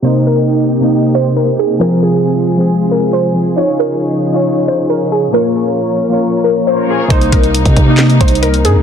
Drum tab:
HH |------------------------------------------------|------------------------------------------------|------------------------------------------------|------------------------------------------------|
CP |------------------------------------------------|------------------------------------------------|------------------------------------------------|------------------------------------------------|
SD |------------------------------------------------|------------------------------------------------|------------------------------------------------|------------------------------------------------|
BD |------------------------------------------------|------------------------------------------------|------------------------------------------------|------------------------------------------------|

HH |x--x--x--x--x--x--x-----x--x--x-x-x-x--x--x-----|
CP |------------------------x-----------------------|
SD |------------------------o-----------------------|
BD |o-----o--------o--o-----------o-----------------|